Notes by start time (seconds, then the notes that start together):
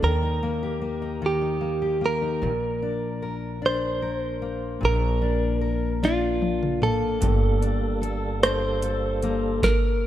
Already playing: G2 A#3 D4 A4
0.02 D#2 D#3 A#4
0.22 D#4
0.43 A#3
0.63 G4
0.82 A#3
1.02 D#4
1.22 D#3
1.26 G4
1.42 D#4
1.61 A#3
1.82 G4
2.01 A#3
2.06 A#4
2.22 D#4
2.42 A#1 A#2
2.82 D4
3.22 A#4
3.62 D4
3.66 C5
4.02 A#4
4.42 A#3
4.81 A#1 A#2
4.85 A#4
5.22 D4
5.61 A#4
6.03 D4 F4, snare
6.42 high tom
6.63 mid tom
6.82 A#3 A4, mid tom
7.21 G1 G2 G3 A#3 A4, kick, closed hi-hat
7.62 D4, closed hi-hat
8.02 A4, closed hi-hat
8.43 D4 C5, cross-stick, closed hi-hat
8.82 A4, closed hi-hat
9.22 A#3, closed hi-hat
9.63 A#4, kick, snare